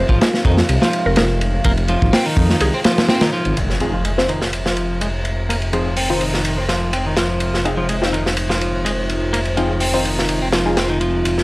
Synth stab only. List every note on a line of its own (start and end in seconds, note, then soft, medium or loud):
3.81 3.95 C4 medium
3.81 3.95 D#4 medium
3.81 3.95 F4 medium
3.81 3.95 G#4 medium
4.18 4.31 C4 medium
4.18 4.31 D#4 medium
4.18 4.31 F4 medium
4.18 4.31 C5 loud
5.73 5.88 C4 medium
5.73 5.88 D#4 medium
5.73 5.88 F4 medium
5.73 5.88 G#4 medium
6.10 6.23 C4 medium
6.10 6.23 D#4 medium
6.10 6.23 F4 medium
6.10 6.23 C5 loud
7.65 7.80 C4 medium
7.65 7.80 D#4 medium
7.65 7.80 F4 medium
7.65 7.80 G#4 medium
8.02 8.15 C4 loud
8.02 8.15 D#4 medium
8.02 8.15 F4 medium
8.02 8.15 C5 loud
9.57 9.72 C4 medium
9.57 9.72 D#4 medium
9.57 9.72 F4 medium
9.57 9.72 G#4 medium
9.94 10.07 C4 loud
9.94 10.07 D#4 medium
9.94 10.07 F4 medium
9.94 10.07 C5 loud
10.66 10.79 C4 medium
10.66 10.79 D#4 medium
10.66 10.79 F4 medium
10.66 10.79 G#4 medium